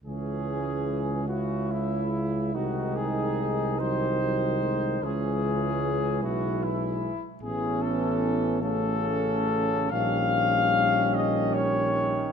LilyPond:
<<
  \new Staff \with { instrumentName = "Trumpet section" } { \time 6/8 \key cis \minor \tempo 4. = 49 gis'4. fis'8 e'4 | fis'8 gis'4 bis'4. | gis'4. fis'8 e'4 | gis'8 a'4 a'4. |
eis''4. dis''8 cis''4 | }
  \new Staff \with { instrumentName = "Flugelhorn" } { \time 6/8 \key cis \minor cis'4. e'4. | dis'2. | cis'4. e'4 r8 | cis'4. cis'4. |
cis'2. | }
  \new Staff \with { instrumentName = "Euphonium" } { \clef bass \time 6/8 \key cis \minor gis2. | gis4. fis8 fis8 gis8 | gis2~ gis8 r8 | b4. a4. |
g2. | }
  \new Staff \with { instrumentName = "Trombone" } { \clef bass \time 6/8 \key cis \minor e4. cis4. | dis4. dis4. | e2~ e8 r8 | e4. cis4. |
dis2. | }
  \new Staff \with { instrumentName = "Tuba" } { \clef bass \time 6/8 \key cis \minor cis,2. | bis,,2. | cis,4. b,,4 r8 | a,,2. |
ais,,2. | }
>>